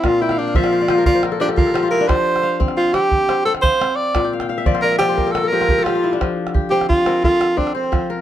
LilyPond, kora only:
<<
  \new Staff \with { instrumentName = "Kora" } { \time 12/8 \key f \major \tempo 4. = 117 r8 g''16 f''16 g''16 f''16 e''16 d''16 c''16 d''16 c''16 bes'16 d''16 c''16 bes'16 a'16 g'16 a'16 bes'16 a'16 g'16 f'16 e'16 d'16~ | d'16 r8. f''4 c''4. c''4 f''4. | r16 g''16 f''16 g''16 f''16 e''16 d''16 c''16 d''16 e''16 d''16 c''16 bes'16 a'16 bes'16 a'16 g'16 f'16 g'16 a'16 g'16 f'16 e'16 d'16~ | d'16 r8. g'8 c''4 bes'8 a'4. c''4 bes'8 | }
  \new Staff \with { instrumentName = "Kora" } { \clef bass \time 12/8 \key f \major bes,4 r8 f4 f4 r8 f4 f4 | f4 r8 c'4 c'4 r8 c'4 c'4 | bes,4 r8 f4 f4 r8 f4 f4 | f4 r8 c'4 c'4 r8 c'4 f4 | }
>>